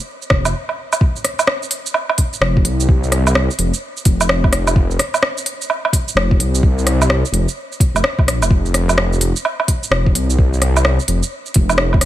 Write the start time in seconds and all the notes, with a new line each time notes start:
0.22 shaker
0.30 F1, kick, cross-stick
0.45 low woodblock, shaker
0.69 low woodblock
0.93 low woodblock, shaker
1.01 kick
1.16 shaker
1.25 cross-stick, open hi-hat
1.39 low woodblock, shaker
1.47 cross-stick
1.63 shaker
1.71 open hi-hat
1.86 shaker
1.94 low woodblock
2.09 low woodblock
2.18 kick, open hi-hat
2.33 shaker
2.41 F1, cross-stick
2.57 kick
2.65 C2, open hi-hat
2.80 shaker
2.88 C2, kick
3.04 shaker
3.12 cross-stick, open hi-hat
3.27 low woodblock, shaker
3.35 C2, cross-stick
3.51 shaker
3.59 F1, open hi-hat
3.74 shaker
3.97 shaker
4.05 F1, kick, open hi-hat
4.21 low woodblock, shaker
4.29 cross-stick
4.44 kick, low woodblock
4.53 cross-stick, open hi-hat
4.67 low woodblock, shaker
4.76 kick
4.91 shaker
4.99 cross-stick, open hi-hat
5.14 low woodblock, shaker
5.23 cross-stick
5.38 shaker
5.46 open hi-hat
5.62 shaker
5.70 low woodblock
5.85 low woodblock
5.93 kick, open hi-hat
6.08 shaker
6.15 F1, cross-stick
6.31 kick
6.39 C2, open hi-hat
6.55 shaker
6.63 C2, kick
6.78 shaker
6.87 cross-stick, open hi-hat
7.02 low woodblock, shaker
7.09 C2, cross-stick
7.25 shaker
7.32 F1, open hi-hat
7.48 shaker
7.72 shaker
7.80 kick, open hi-hat
7.94 F1, low woodblock, shaker
8.04 cross-stick
8.19 kick, low woodblock
8.26 A#1, cross-stick, open hi-hat
8.40 F1, low woodblock, shaker
8.51 kick
8.66 shaker
8.74 cross-stick, open hi-hat
8.89 low woodblock, shaker
8.98 cross-stick
9.13 shaker
9.21 open hi-hat
9.36 shaker
9.45 low woodblock
9.60 low woodblock
9.68 kick, open hi-hat
9.83 shaker
9.91 F1, cross-stick
10.06 kick
10.14 C2, open hi-hat
10.30 shaker
10.38 C2, kick
10.53 shaker
10.62 cross-stick, open hi-hat
10.77 low woodblock, shaker
10.85 C2, cross-stick
11.00 shaker
11.08 F1, open hi-hat
11.23 shaker
11.46 shaker
11.54 F1, kick, open hi-hat
11.69 low woodblock, shaker
11.78 cross-stick
11.93 kick, low woodblock
12.01 cross-stick, open hi-hat